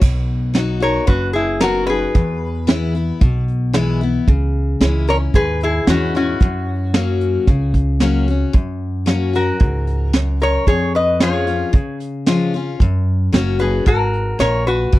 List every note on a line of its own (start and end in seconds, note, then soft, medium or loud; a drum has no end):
0.01 0.97 B1 medium
0.01 1.03 B2 medium
0.01 kick loud
0.01 crash loud
0.54 0.80 F#3 medium
0.54 0.80 B3 medium
0.54 0.81 D#4 medium
0.54 0.79 F#4 medium
0.54 snare loud
0.54 closed hi-hat medium
0.80 1.08 D#4 soft
0.80 1.07 F#4 medium
0.80 1.07 A#4 medium
0.80 1.09 C#5 medium
0.80 closed hi-hat medium
1.07 2.03 F#1 medium
1.07 2.09 F#2 medium
1.07 1.33 F#4 medium
1.07 1.33 B4 loud
1.07 kick loud
1.07 closed hi-hat medium
1.33 1.60 E4 medium
1.33 1.62 G#4 medium
1.33 closed hi-hat medium
1.60 1.87 F#3 medium
1.60 1.87 B3 medium
1.60 1.87 D#4 medium
1.60 1.86 F#4 loud
1.60 1.87 F#4 medium
1.60 1.86 A#4 loud
1.60 snare loud
1.60 closed hi-hat medium
1.87 2.14 D#4 soft
1.87 2.13 F#4 medium
1.87 3.45 G#4 medium
1.87 3.43 B4 medium
1.87 closed hi-hat medium
2.15 3.10 E2 medium
2.15 3.16 E2 medium
2.15 kick medium
2.15 closed hi-hat medium
2.67 2.93 E3 medium
2.67 2.93 G#3 medium
2.67 2.94 B3 medium
2.67 2.94 E4 medium
2.67 snare loud
2.67 closed hi-hat medium
2.95 3.21 B3 soft
2.95 3.20 E4 medium
2.95 closed hi-hat medium
3.21 4.17 B1 medium
3.21 4.23 B2 medium
3.21 kick loud
3.21 closed hi-hat medium
3.48 closed hi-hat medium
3.73 4.00 E3 medium
3.73 4.00 G#3 medium
3.73 4.00 B3 medium
3.73 4.00 E4 medium
3.73 snare loud
3.73 closed hi-hat medium
4.01 4.28 B3 medium
4.01 4.27 E4 medium
4.01 closed hi-hat medium
4.27 4.75 C#2 medium
4.27 5.29 C#3 medium
4.27 kick loud
4.27 closed hi-hat soft
4.80 5.26 C#2 medium
4.80 5.06 E3 medium
4.80 5.07 G#3 medium
4.80 5.07 C#4 medium
4.80 5.06 E4 medium
4.80 snare medium
4.80 closed hi-hat medium
5.08 5.34 C#4 medium
5.08 5.33 E4 medium
5.08 5.16 A#4 medium
5.08 5.17 C#5 loud
5.08 closed hi-hat medium
5.34 5.80 D#2 medium
5.34 6.36 G#2 medium
5.34 5.60 G#4 medium
5.34 5.63 B4 loud
5.34 kick loud
5.34 closed hi-hat medium
5.60 5.87 E4 medium
5.60 5.90 G#4 medium
5.60 closed hi-hat medium
5.87 6.33 E2 medium
5.87 6.13 E3 medium
5.87 6.14 G#3 medium
5.87 6.14 C#4 medium
5.87 6.14 E4 medium
5.87 6.15 F#4 medium
5.87 snare loud
5.87 closed hi-hat medium
6.15 7.71 C#4 medium
6.15 6.41 C#4 soft
6.15 6.40 E4 medium
6.15 7.71 F#4 medium
6.15 closed hi-hat medium
6.40 7.36 F#2 medium
6.40 7.43 F#2 medium
6.40 kick loud
6.40 closed hi-hat medium
6.94 7.45 F#3 medium
6.94 7.45 A#3 medium
6.94 7.45 C#4 medium
6.94 7.46 F#4 medium
6.94 snare loud
6.94 closed hi-hat medium
7.21 closed hi-hat medium
7.47 8.43 C#2 medium
7.47 8.49 C#3 medium
7.47 kick loud
7.47 closed hi-hat medium
7.74 kick medium
7.74 closed hi-hat medium
8.00 8.26 F#3 medium
8.00 8.27 A#3 medium
8.00 8.27 C#4 medium
8.00 8.27 F#4 medium
8.00 snare loud
8.00 closed hi-hat medium
8.28 8.55 C#4 soft
8.28 8.53 F#4 medium
8.28 closed hi-hat soft
8.53 9.55 F#2 medium
8.53 9.50 F#2 medium
8.53 kick medium
8.53 closed hi-hat medium
9.06 9.32 F#3 medium
9.06 9.33 A#3 medium
9.06 9.33 C#4 medium
9.06 9.32 F#4 medium
9.06 snare loud
9.06 closed hi-hat medium
9.33 9.60 C#4 soft
9.33 9.59 F#4 medium
9.33 10.37 F#4 medium
9.33 10.40 A#4 medium
9.33 closed hi-hat medium
9.60 10.56 C#2 medium
9.60 10.11 G#2 medium
9.60 kick loud
9.60 closed hi-hat medium
9.87 closed hi-hat medium
10.13 10.64 F#2 medium
10.13 snare loud
10.13 closed hi-hat medium
10.40 10.66 A#4 medium
10.40 10.67 C#5 loud
10.40 closed hi-hat medium
10.66 11.62 F2 medium
10.66 11.69 F2 medium
10.66 10.92 G#4 medium
10.66 10.93 C#5 medium
10.66 kick medium
10.66 closed hi-hat medium
10.95 11.19 B4 medium
10.95 11.22 D#5 medium
11.20 11.46 F3 medium
11.20 11.46 G#3 medium
11.20 11.47 C#4 medium
11.20 11.46 F4 medium
11.20 11.97 G#4 medium
11.20 11.98 C#5 medium
11.20 snare loud
11.20 closed hi-hat medium
11.47 11.74 C#4 soft
11.47 11.73 F4 soft
11.47 closed hi-hat medium
11.73 12.74 C#3 medium
11.73 12.69 C#3 medium
11.73 kick loud
11.73 closed hi-hat medium
12.00 closed hi-hat medium
12.26 12.52 F3 medium
12.26 12.53 G#3 medium
12.26 12.53 C#4 loud
12.26 12.53 F4 loud
12.26 snare loud
12.26 closed hi-hat medium
12.53 12.80 C#4 soft
12.53 12.79 F4 medium
12.53 closed hi-hat medium
12.80 13.28 F#2 medium
12.80 13.82 F#2 medium
12.80 kick loud
12.80 closed hi-hat medium
13.33 13.79 F#1 medium
13.33 13.58 F#3 medium
13.33 13.59 A#3 medium
13.33 13.59 C#4 medium
13.33 13.58 F#4 medium
13.33 snare loud
13.33 closed hi-hat medium
13.59 13.86 C#4 soft
13.59 13.85 F#4 soft
13.59 13.85 G#4 medium
13.59 13.87 B4 medium
13.59 closed hi-hat medium
13.86 14.32 G#1 medium
13.86 14.37 G#2 medium
13.86 14.37 F#4 medium
13.86 14.40 A#4 medium
13.86 kick loud
13.86 closed hi-hat medium
14.13 closed hi-hat medium
14.39 14.85 A#1 medium
14.39 14.90 A#2 medium
14.39 14.65 A#4 medium
14.39 14.67 C#5 loud
14.39 snare loud
14.39 closed hi-hat medium
14.67 14.99 F#4 medium
14.67 14.99 B4 medium
14.67 closed hi-hat medium
14.92 14.99 B1 medium
14.92 14.99 B2 medium
14.92 kick loud
14.92 closed hi-hat medium